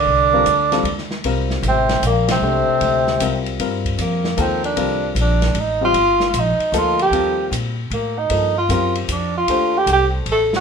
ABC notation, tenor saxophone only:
X:1
M:3/4
L:1/8
Q:"Swing" 1/4=153
K:Cdor
V:1 name="Tenor saxophone"
D4- D z | z2 C2 B, C- | C4- C z | z2 B,2 C D- |
D2 D2 E F- | F2 E2 F G- | G2 z2 B, E- | E F F z D F- |
F G G z A ^F |]